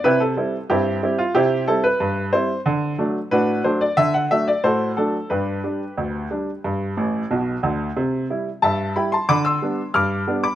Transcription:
X:1
M:2/4
L:1/16
Q:1/4=91
K:C
V:1 name="Grand piano"
[EGB] A3 [CEG]3 F | [CEG]2 A B3 c2 | z4 [D^FB]2 c d | e ^f e d [^FAc]2 A2 |
[DGB]8- | [DGB]6 z2 | z4 [ea]2 [gb] [ac'] | [bd'] [c'e']3 [d'f']3 [bd'] |]
V:2 name="Grand piano" clef=bass
C,2 [G,CE]2 G,,2 [G,CE]2 | C,2 [G,CE]2 G,,2 [G,CE]2 | D,2 [^F,A,D]2 A,,2 [F,A,D]2 | D,2 [^F,A,D]2 A,,2 [F,A,D]2 |
G,,2 [G,D]2 D,,2 [G,D]2 | G,,2 [A,,,A,,]2 [B,,,B,,]2 [D,,D,]2 | C,2 [G,E]2 G,,2 [G,E]2 | D,2 [G,B,D]2 G,,2 [G,B,D]2 |]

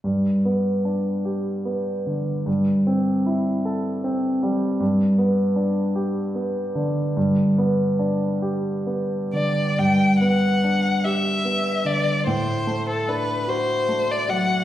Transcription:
X:1
M:6/8
L:1/16
Q:3/8=49
K:G
V:1 name="Violin"
z12 | z12 | z12 | z8 z2 d2 |
g2 f4 e4 d2 | c3 A B2 c3 d f2 |]
V:2 name="Grand piano"
G,,2 B,2 D2 G2 B,2 D,2 | G,,2 C2 E2 A2 C2 G,2 | G,,2 B,2 D2 G2 B,2 D,2 | G,,2 B,2 D2 G2 B,2 D,2 |
G,,2 B,2 D2 G2 B,2 D,2 | A,,2 A,2 D2 F2 A,2 F,2 |]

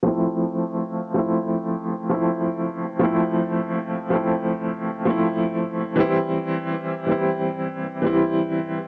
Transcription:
X:1
M:4/4
L:1/16
Q:"Swing 16ths" 1/4=81
K:F
V:1 name="Upright piano"
[F,A,CE]6 [F,A,CE]4- [F,A,CE] [F,A,CE]4- [F,A,CE] | [F,A,CE]6 [F,A,CE]4- [F,A,CE] [F,A,CE]4- [F,A,CE] | [E,G,CE]6 [E,G,CE]4- [E,G,CE] [E,G,CE]4- [E,G,CE] |]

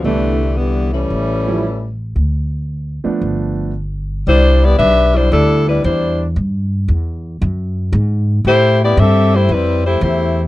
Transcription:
X:1
M:4/4
L:1/16
Q:"Swing" 1/4=115
K:C
V:1 name="Saxophone section"
[D,E,G,A,]4 [D,E,G,B,]2 [E,G,A,_D]8 z2 | z16 | [G,DEc]2 [B,EGd]2 [DGBe]2 [G,DEc]2 [G,DEA]2 [G,DEB]2 [G,DEc]3 z | z16 |
[A,EGc]2 [B,EGd]2 [CGAe]2 [A,EGc]2 [G,CEB]2 [A,EGc]2 [A,EGc]3 z |]
V:2 name="Grand piano"
[E,A,B,D]2 z8 [F,G,^CE]2 z4 | z6 [F,A,B,D]6 z4 | z16 | z16 |
z16 |]
V:3 name="Upright bass" clef=bass
C,,8 A,,,8 | D,,6 z2 G,,,8 | C,,4 B,,,4 D,,4 E,,4 | G,,4 E,,4 ^F,,4 ^G,,4 |
A,,4 G,,4 F,,4 E,,4 |]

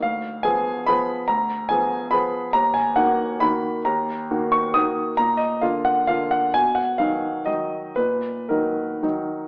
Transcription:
X:1
M:3/4
L:1/8
Q:1/4=136
K:Ebm
V:1 name="Grand piano"
f2 a2 =b2 | b2 a2 =b2 | b a g2 c'2 | b3 d' e'2 |
b e f g f g | a ^f =f2 ^d2 | c2 B4 |]
V:2 name="Grand piano" clef=bass
=D,,2 [F,=B,A]2 [F,B,A]2 | =D,,2 [F,=B,A]2 [F,B,A]2 | E,,2 [E,B,G]2 [E,B,G]2 | E,,2 [E,B,G]2 [E,B,G]2 |
B,,2 [=D,B,F]2 [D,B,F]2 | =B,,2 [^D,^F,^D]2 [D,F,D]2 | B,,2 [E,G,E]2 [E,G,E]2 |]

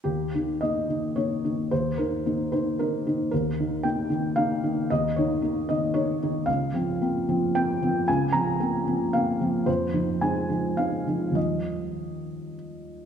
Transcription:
X:1
M:3/4
L:1/8
Q:1/4=112
K:Ebmix
V:1 name="Felt piano"
G2 e2 d2 | c B2 c B2 | B2 g2 f2 | e d2 e d2 |
f4 g2 | a b3 f2 | c2 a2 f2 | e4 z2 |]
V:2 name="Felt piano"
E,, [E,E] [B,E] [E,E] [B,E] [E,E] | E,, [E,E] [B,E] [E,E] [B,E] [E,E] | E,, [E,E] [B,E] [E,E] [B,E] [E,E] | E,, [E,E] [B,E] [E,E] [B,E] [E,E] |
D,, [F,C] [B,C] [F,C] [B,C] [F,C] | D,, [F,C] [B,C] [F,C] [B,C] [F,C] | F,, [F,E] [A,E] [F,E] [A,E] [F,E] | [E,,F,G,E]6 |]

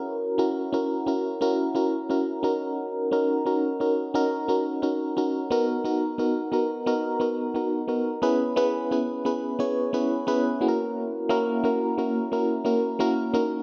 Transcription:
X:1
M:4/4
L:1/8
Q:"Swing 16ths" 1/4=88
K:F#mix
V:1 name="FM electric piano"
[CEFA] [CEFA] [CEFA] [CEFA] [CEFA] [CEFA] [CEFA] [CDFA]- | [CDFA] [CDFA] [CDFA] [CDFA] [CDFA] [CDFA] [CDFA] [CDFA] | [B,DFA] [B,DFA] [B,DFA] [B,DFA] [B,DFA] [B,DFA] [B,DFA] [B,DFA] | [B,CEGB] [B,CEGB] [B,CEGB] [B,CEGB] [B,CEGc] [B,CEGB] [B,CEGB] [A,CEFGA]- |
[A,CEFGA] [A,CEFA] [A,CEFA] [A,CEFA] [A,CEFA] [A,CEFA] [A,CEFA] [A,CDFA] |]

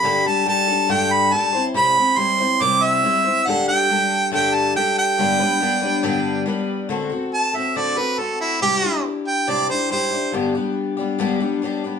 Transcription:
X:1
M:4/4
L:1/8
Q:1/4=140
K:G
V:1 name="Harmonica"
b a a2 g b a2 | b2 c'2 d' e3 | f g3 g a g g- | g6 z2 |
z2 a e d B A E | G2 z g d c c2 | z8 |]
V:2 name="Twelve-string acoustic guitar"
[G,,D,G,DGA] [G,DGA] [G,DGA] [G,DGA] [G,,D,G,DGA]2 [G,DGA] [CEc] | [C,G,CEc] [CEc] [G,CEc] [CEc] [C,G,CEc]2 [G,CEc] [CEc] | [G,,D,G,DGA] [G,DGA] [G,DGA]2 [G,,D,G,DGA]2 [G,DGA]2 | [G,,D,G,B,DB] [G,B,DB] [G,B,DB] [G,B,DB] [G,,D,G,B,DB]2 [G,B,DB]2 |
[D,A,CFA] [CFA]2 [CFA] [D,A,CFA] [CFA] [A,CFA]2 | [C,G,DEG] [DEG]3 [C,G,DEG] [DEG] [G,DEG] [DEG] | [G,,D,G,B,DG] [G,B,DG]2 [G,B,DG] [G,,D,G,B,DG] [G,B,DG] [G,B,DG] [G,B,DG] |]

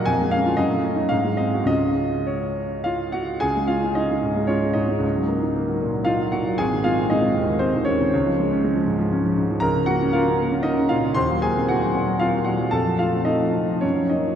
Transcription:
X:1
M:3/4
L:1/16
Q:1/4=115
K:Db
V:1 name="Grand piano"
a2 f2 e4 f2 e2 | e4 d4 [Ff]2 [Gg]2 | [Aa]2 [Ff]2 [Ee]4 [Dd]2 [Ee]2- | [Ee]6 z2 [Ff]2 [Gg]2 |
[Aa]2 [Ff]2 [Ee]4 [Cc]2 [Dd]2- | [Dd]6 z6 | [K:Bbm] [Bb]2 [Gg]2 [Ff]4 [Ee]2 [Ff]2 | [cc']2 [Aa]2 [Gg]4 [Ff]2 [Gg]2 |
[=A=a]2 [Ff]2 [Ee]4 [Dd]2 [Ee]2 |]
V:2 name="Grand piano" clef=bass
F,, A, D F G,, =A, D E _A,, _A, C G | [D,,A,DF]12 | D,, A, D F D A, A,, A, F A, A,, A, | D,, G, B, E B, G, B,, G, E G, B,, G, |
A,,, E, A, C A, E, E,, E,2 E, E,, E, | D,, F, A, D A, F, A,, F, D F, A,, F, | [K:Bbm] D,, D, B, D B, D B, D B, D, B,, D, | E,, G, B, C B, G, B,, G, C G, B,, G, |
F,, F, =A, C A, F, C, F, G,, F, B, F, |]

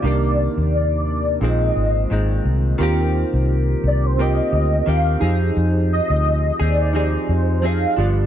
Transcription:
X:1
M:4/4
L:1/16
Q:"Swing 16ths" 1/4=87
K:Eb
V:1 name="Soft synth lead"
d4 d4 e6 z2 | z6 d c e4 f3 z | z2 e4 d4 c2 f3 z |]
V:2 name="Synth keys"
[B,DEG]6- [B,DEG] z [CEFA]6- [CEFA] z | [CFGB]6- [CFGB] z [CFGB]6 [EGAc]2- | [EGAc]4- [EGAc] z3 [EGAc]6 [FG=Bd]2 |]
V:3 name="Clean electric guitar"
[C,E,B,D]8 [B,,E,A,C]4 [B,,E,A,C]4 | [E,B,CG]8 [B,CG]4 [E,B,CG]2 [F,CEA]2- | [F,CEA]6 [CEA]2 [F,CEA]4 [F,CEA]2 [G,,F,=B,D]2 |]
V:4 name="Fingered electric bass" clef=bass
C,,3 E,,4- E,, B,,,2 A,,,2 A,,,2 C,,2 | E,,3 C,,3 C,,4 D,,2 E,,2 F,,2 | F,,3 D,,3 E,,4 F,,4 G,,,2 |]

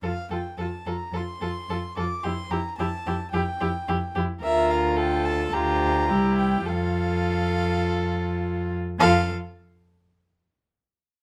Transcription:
X:1
M:4/4
L:1/8
Q:1/4=108
K:F
V:1 name="Violin"
f g a b c'3 d' | c' b a2 g3 z | e f g a b3 g | f6- f z |
f z6 z |]
V:2 name="Violin"
A A A A A A A A | G G G G G G G G | B2 A2 G2 G2 | A6- A z |
A z6 z |]
V:3 name="Viola"
F F F F F F F F | E E E E E E E E | F4 F2 E2 | F6- F z |
F z6 z |]
V:4 name="Cello" clef=bass
F,, F,, F,, F,, F,, F,, F,, F,, | F,, F,, F,, F,, F,, F,, F,, F,, | D,,4 D,,2 C,,2 | F,,6- F,, z |
F,, z6 z |]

